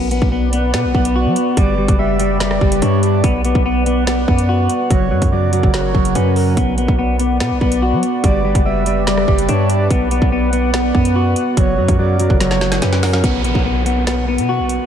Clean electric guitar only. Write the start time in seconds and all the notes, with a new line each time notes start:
Already playing: B3
0.11 B3
0.32 B3
0.53 B3
0.74 B3
0.95 B3
1.16 F#4
1.57 G3
1.78 G3
1.99 G3
2.20 G3
2.40 G3
2.61 G3
2.82 D4
3.24 B3
3.45 B3
3.66 B3
3.86 B3
4.07 B3
4.28 B3
4.49 F#4
4.91 F#3
5.11 F#3
5.33 F#3
5.53 F#3
5.74 F#3
5.95 F#3
6.15 C#4
6.57 B3
6.78 B3
6.99 B3
7.19 B3
7.41 B3
7.62 B3
7.82 F#4
8.24 G3
8.45 G3
8.65 G3
8.87 G3
9.07 G3
9.28 G3
9.49 D4
9.90 B3
10.11 B3
10.32 B3
10.53 B3
10.73 B3
10.95 B3
11.16 F#4
11.57 F#3
11.78 F#3
11.99 F#3
12.20 F#3
12.40 F#3
12.62 F#3
12.82 C#4
13.24 B3
13.45 B3
13.65 B3
13.86 B3
14.07 B3
14.28 B3
14.49 F#4